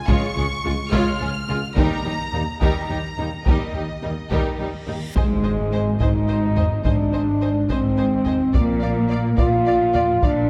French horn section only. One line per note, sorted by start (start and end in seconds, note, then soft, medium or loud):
0.65 0.75 G#3 medium
0.65 0.75 F4 medium
1.49 1.59 G#3 medium
1.49 1.59 F4 medium
2.35 2.44 A#3 medium
2.35 2.44 G4 medium
3.19 3.29 A#3 medium
3.19 3.28 G4 medium
4.02 4.13 A#3 soft
4.02 4.12 G4 soft
4.88 4.97 A#3 soft
4.88 4.98 G4 soft
5.16 5.96 G#3 medium
6.02 6.85 D#4 loud
6.85 7.68 D4 medium
7.72 8.55 C4 medium
8.56 9.38 A#3 medium
9.39 10.23 F4 loud
10.25 10.50 D4 medium